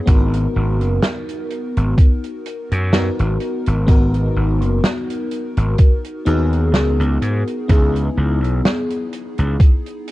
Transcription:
0.06 G#1 B3 D#4 F#4 A#4, kick, closed hi-hat
0.34 closed hi-hat
0.56 G#1
0.81 F#1, closed hi-hat
1.02 snare, closed hi-hat
1.29 closed hi-hat
1.50 closed hi-hat
1.77 G#1, closed hi-hat
1.98 kick, closed hi-hat
2.24 closed hi-hat
2.46 closed hi-hat
2.71 F#2, closed hi-hat
2.92 B3 D#4 F#4 A#4, snare, closed hi-hat
3.19 G#1, closed hi-hat
3.40 closed hi-hat
3.66 G#1, closed hi-hat
3.87 B3 D#4 F#4 A#4, kick, closed hi-hat
4.14 closed hi-hat
4.36 G#1
4.62 F#1, closed hi-hat
4.84 snare, closed hi-hat
5.10 closed hi-hat
5.31 closed hi-hat
5.57 G#1, closed hi-hat
5.78 kick, closed hi-hat
6.04 closed hi-hat
6.25 D#2 B3 D#4 F#4 G#4, closed hi-hat
6.53 closed hi-hat
6.73 C#2, snare, closed hi-hat
7.00 C#2, closed hi-hat
7.22 G#2, closed hi-hat
7.47 closed hi-hat
7.68 C#2 B3 D#4 E4 G#4, kick, closed hi-hat
7.96 closed hi-hat
8.17 C#2
8.43 B1, closed hi-hat
8.65 snare, closed hi-hat
8.90 closed hi-hat
9.13 closed hi-hat
9.38 C#2, closed hi-hat
9.60 kick, closed hi-hat
9.86 closed hi-hat
10.08 closed hi-hat

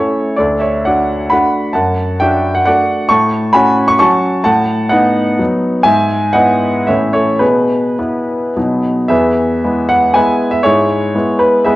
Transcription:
Already playing: A3 C#4 E4 A4 C#5
0.37 D2 A4 D5
0.60 C#5 E5
0.85 D4 F#4 D5 F#5
1.30 A3 D4 F#4 F#5 B5
1.73 F#2 F#5 A5
2.20 D4 F#4 E5 G5
2.55 F#5
2.66 A3 D4 F#4 D5 F#5
3.09 A2 A5 C#6
3.53 C#4 F#4 G#5 B5
3.88 C#6
3.99 F#3 C#4 F#4 A5 C#6
4.44 A2 F#5 A5
4.89 B3 D#4 D#5 F#5
5.39 F#3 B3 D#4
5.83 G#2 E5 G#5
6.33 B3 E4 D#5 F#5
6.87 A2 E3 C#4 E4 C#5 E5
7.13 A4 C#5
7.39 B2 G#4 B4
7.99 B3 E4
8.56 B2 F#3 B3 D#4
9.08 E2 G#4 B4 E5
9.64 G#3 B3 E4
9.89 F#5
10.14 G#3 B3 E4 B4 E5 G#5
10.51 E5
10.63 G#2 E4 G#4 C#5
11.15 G#3 B3 E4
11.39 B4
11.65 G#3 B3 E4 G#4 B4 E5

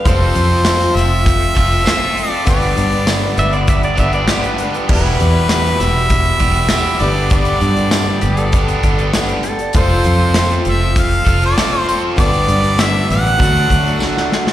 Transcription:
0.05 F1 F3 C4 F4 A4 C5, kick, closed hi-hat
0.35 F2 F3 C4 F4 A4, closed hi-hat
0.50 C4 F4 A4
0.64 F3 C4 F4 A4, snare, closed hi-hat, tambourine
0.79 C4 F4 A4, closed hi-hat
0.94 F1 F3 C4 F4 A4 E5, snare, closed hi-hat
1.08 C4 F4 A4
1.26 kick, closed hi-hat
1.42 closed hi-hat
1.54 F1 F3 C4 F4 A4, kick, closed hi-hat
1.69 C4 F4 A4, closed hi-hat
1.83 F3 C4 F4 A4, tambourine
1.87 snare, closed hi-hat
2.14 F3 C4 F4 A4, closed hi-hat
2.18 D5
2.29 C4 F4 A4
2.44 G1 G2 D3 G3 B3 D4 G4 B4, kick, closed hi-hat
2.49 G4 D5
2.62 closed hi-hat
2.76 G2 G3 B3 D4 B4, closed hi-hat
2.92 G3 B3 D4 B4, closed hi-hat
3.07 G2 D3 G3 B3 D4 B4, snare, closed hi-hat, tambourine
3.23 G3 B3 D4 B4
3.37 G1 G3 B3 D4 B4 E5, closed hi-hat
3.52 G3 B3 D4 B4 D5, closed hi-hat
3.68 E5, kick, closed hi-hat
3.83 D5, closed hi-hat
3.96 G1 G2 D3 G3 B3 D4 G4 E5, kick, closed hi-hat
4.01 B4
4.13 G3 B3 D4 B4 D5, closed hi-hat
4.28 G2 D3 G3 B3 D4 G4 B4, snare, closed hi-hat, tambourine
4.44 closed hi-hat
4.58 G3 B3 D4 B4, closed hi-hat
4.74 G3 B3 D4 B4, closed hi-hat
4.88 E1 E2 B2 E3 G3 B3 E4 G4 B4, kick, crash
4.94 B4
5.18 E2 G3 B3 E4 G4, closed hi-hat
5.34 B3 E4 G4
5.48 E3 G3 B3 E4 G4, snare, closed hi-hat, tambourine
5.63 B3 E4 G4, closed hi-hat
5.79 E1 G3 B3 E4 G4 E5, snare, closed hi-hat
5.95 B3 E4 G4
6.10 kick, closed hi-hat
6.25 closed hi-hat
6.39 E1 E2 B2 E3 G3 B3 E4 G4, kick, closed hi-hat
6.55 E4 G4, closed hi-hat
6.59 B3
6.69 E2 B2 E3 G3 B3 E4, snare, closed hi-hat, tambourine
6.73 G4
7.00 G1 G2 D3 G3 B3 D4 G4 B4 D5, closed hi-hat
7.16 G3 B3 D4 G4
7.30 G2 D3 G3 B3 D4 D5, kick, closed hi-hat
7.34 G4
7.45 closed hi-hat
7.61 G2 G3 B3 D4 G4, closed hi-hat
7.77 G3 B3 D4 G4, closed hi-hat
7.91 G2 D3 G3 B3 D4 G4, snare, closed hi-hat, tambourine
8.07 G3 B3 D4 G4
8.21 G1 G3 B3 D4 G4, closed hi-hat
8.37 G3 B3 D4 G4 A4, closed hi-hat
8.52 G2 D3 G3 B3 D4 G4, kick, closed hi-hat
8.68 closed hi-hat
8.83 G1 G2 D3 G3 B3 D4 G4, kick, closed hi-hat
8.98 G3 B3 D4 G4, closed hi-hat
9.14 G2 D3 G3 B3 D4 G4, snare, closed hi-hat, tambourine
9.29 closed hi-hat
9.43 G3 B3 D4 G4 A4, closed hi-hat
9.59 G3 B3 D4 G4, closed hi-hat
9.73 F1 F3 C4 F4 A4 C5, kick, closed hi-hat
9.77 A4
10.04 F2 F3 C4 F4 A4, closed hi-hat
10.21 C4 F4 A4
10.34 F3 C4 F4 A4, snare, closed hi-hat, tambourine
10.51 C4 F4 A4, closed hi-hat
10.65 F1 F3 C4 F4, closed hi-hat
10.69 A4 E5
10.80 C4 F4 A4
10.96 kick, closed hi-hat
11.01 F5
11.11 closed hi-hat
11.25 F1 F3 C4 F4 A4, kick, closed hi-hat
11.29 A4
11.41 C4 F4 A4, closed hi-hat
11.45 D5
11.57 F3 C4 F4 A4, snare, closed hi-hat, tambourine
11.88 F3 C4 F4 A4 C5, closed hi-hat
12.16 G1 G2 D3 G3 B3 D4 G4 B4 D5, kick, closed hi-hat
12.33 closed hi-hat
12.47 G2 G3 B3 D4 B4, closed hi-hat
12.62 G3 B3 D4 B4, closed hi-hat
12.77 G2 D3 G3 B3 D4 B4, snare, closed hi-hat, tambourine
12.81 E5
12.92 G3 B3 D4 B4
13.08 A1 G3 B3 D4 B4 F#5, snare, closed hi-hat
13.23 G3 B3 D4 B4, closed hi-hat
13.37 D2 D3 F#3 A3 D4 F#4 A4 D5, kick
13.41 closed hi-hat
13.57 closed hi-hat
13.69 D2 A3 D4 F#4 A4, kick, closed hi-hat
13.83 D4 F#4 A4, closed hi-hat
13.99 D3 A3 D4 F#4 A4, snare, tambourine
14.17 snare
14.29 A3 D4 F#4 A4, snare
14.45 D4 F#4 A4, snare

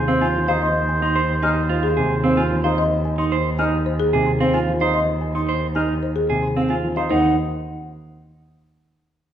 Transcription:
Already playing: D#2 C5 C6
0.08 C4 F5
0.21 F4 G#5
0.35 F3
0.48 D#4 C5 F5
0.62 D#5 C6
0.89 G#5
1.02 D#4 C6
1.15 C5 C6
1.43 D#4 G#5 F6
1.69 F4 C5
1.83 G#4 F5
1.97 C3 G#4
2.10 C6
2.24 C4 F5
2.37 F4 G#5
2.51 F3
2.64 D#4 C5 F5
2.78 D#5 C6
3.05 G#5
3.18 D#4 C6
3.32 C5 C6
3.59 D#4 G#5 F6
3.86 C5
4.00 G#4
4.13 C3 G#4
4.26 C6
4.40 C4 F5
4.54 F4 G#5
4.68 F3
4.80 D#4 C5 F5
4.94 D#5 C6
5.21 G#5
5.35 D#4 C6
5.49 C5 C6
5.75 D#4 G#5 F6
6.03 C5
6.16 G#4
6.30 C3 G#4
6.42 C6
6.56 C4 F5
6.69 F4 G#5
6.84 F3
6.96 D#4 C5 F5
7.10 D#2 D#3 D#4 C5 F#5

